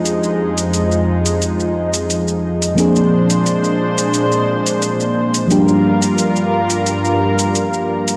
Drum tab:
HH |o--oo--oo--oo--o|o--oo--oo--oo--o|o--oo--oo--oo--o|
SH |xx-xxx-xxx-xxx-x|xx-xxx-xxx-xxx-x|xx-xxx-xxx-xxx-x|